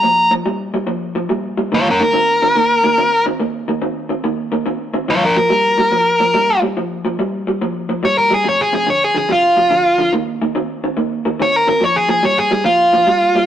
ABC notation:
X:1
M:4/4
L:1/8
Q:"Swing" 1/4=142
K:Eb
V:1 name="Lead electric guitar"
b z6 z | (3[F_d] [_DB] B- B4- B z | z8 | (3[F_d] [=DB] B- B4- B z |
z6 (3_d B A | (3_d A A (3d A A F4 | z6 (3_d B B | (3_d A A (3d A A F4 |]
V:2 name="Clean electric guitar" clef=bass
[B,,F,] [B,,F,] [B,,G,] [B,,G,] [B,,F,] [B,,F,] [B,,G,] [B,,G,] | [E,B,] [E,B,] [E,C] [E,C] [E,B,] [E,B,] [E,C] [E,C] | [E,B,] [E,B,] [E,C] [E,C] [E,B,] [E,B,] [E,C] [E,C] | [B,,F,] [B,,F,] [B,,G,] [B,,G,] [B,,F,] [B,,F,] [B,,G,] [B,,G,] |
[B,,F,] [B,,F,] [B,,G,] [B,,G,] [B,,F,] [B,,F,] [B,,G,] [B,,G,] | [F,,C,] [F,,C,] [F,,D,] [F,,D,] [F,,C,] [F,,C,] [F,,D,] [F,,D,] | [E,B,] [E,B,] [E,C] [E,C] [E,B,] [E,B,] [E,C] [E,C] | [B,,F,] [B,,F,] [B,,G,] [B,,G,] [B,,F,] [B,,F,] [B,,G,] [B,,G,] |]